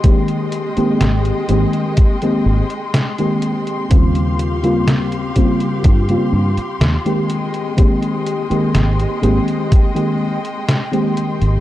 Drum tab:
HH |xxxxxxxxxx-xxxxx|xxxxxxxxxx-xxxxx|xxxxxxxxxx-xxxxx|
SD |----o-------o---|----o-------o---|----o-------o---|
BD |o-------o-------|o-----o-o-------|o-------o-------|